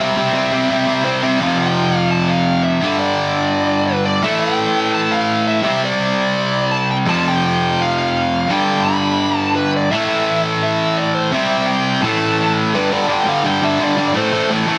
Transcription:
Already playing: C3
0.00 G3 C4 E5
0.17 C3 G3 C4
0.34 C3 G3 C4
0.52 C3 G3 C4
0.70 C3 G3 C4
0.85 C3 G3 C4
1.04 C3 G3 C4 C5
1.22 C3 G3 C4 E5
1.39 F2 C3 F3 F5
1.59 G5
2.11 A5
2.28 F5
2.64 E5
2.81 G2 D3 G3
2.99 D5
3.88 B4
4.05 D5
4.22 A2 E3 A3 E5
4.40 G5
4.94 A5
5.11 F5
5.47 E5
5.63 C3 G3 C4
5.85 D5
6.71 A5
6.91 G5
7.05 F2 C3 F3 A5
7.28 G5
7.46 G5
7.82 F5
7.98 F5
8.48 G2 D3 G3 G5
8.84 B5
9.38 A5
9.56 B4
9.76 D5
9.91 A2 E3 A3 E5
10.63 E5
10.97 D5
11.15 C5
11.32 C3 G3 C4 E5
11.67 G5
12.01 A2 E3 A3 A5
12.74 G2 D3 G3 B4
12.91 G2 D3 G3 D5
13.07 G2 D3 G3
13.13 G5
13.24 G2 D3 G3
13.28 F5
13.43 G2 D3 G3 G5
13.62 G2 D3 G3 E5
13.79 G2 D3 G3
13.84 D5
13.97 G2 D3 G3
14.08 D5
14.14 A2 E3 A3 C5
14.33 A2 E3 A3
14.50 A2 E3 A3
14.67 A2 E3 A3

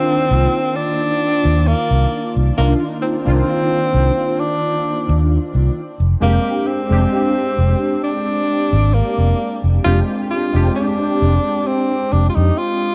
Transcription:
Already playing: D#3 A#3 C4 D4 D#4 F4
0.31 C2
0.76 D4
1.45 D#2
1.68 A#3
1.91 C2
2.36 C2
2.57 C2 A#3 D4 D#4 F4
3.03 C4
3.25 C2 D#3 A#3 D4 F4
3.94 C2
4.40 D4
5.09 D#2
5.55 C2
6.00 F1
6.20 F1 G#3 A#3 C4 D4 G4
6.67 C4
6.89 F1 G#3 C4 D4 G4
7.58 F1
8.03 D4
8.73 G#1
8.94 A#3
9.18 F1
9.64 F1
9.84 F1 G#3 C4 D4 F4 G4
10.31 F4
10.53 F1 G#3 C4 D4 G4
10.76 D4
11.22 F1
11.67 C4
12.12 F1 D4
12.29 F4
12.35 F2 D#4
12.58 F4

